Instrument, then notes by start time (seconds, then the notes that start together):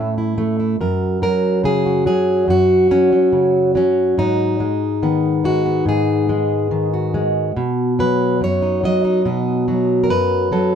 steel-string acoustic guitar
Already playing: A2 A3 C#4 E4 A4
0.18 E4
0.38 A3
0.60 E4
0.81 F#2 A#4
1.22 F#3 A#4
1.64 C#3 G#4
1.86 F#4
2.06 F#3 G#4
2.48 F#2 F#4
2.91 F#3 C#4
3.12 F#3
3.33 C#3
3.75 F#3 C#4
4.18 G#2 D#4
4.60 G#3
5.03 D#3 B3
5.44 G#3 F#4
5.66 B3
5.86 G#2 G#4
6.29 G#3
6.71 D#3
6.94 F#4
7.14 G#3
7.57 B2
7.99 F#3 B4
8.41 F#2 C#5
8.62 D#4
8.84 F#3 D#5
9.05 D#4
9.25 B2 D#4
9.68 F#3 D#4
10.04 A#4
10.10 F#2 B4
10.52 F#3 A4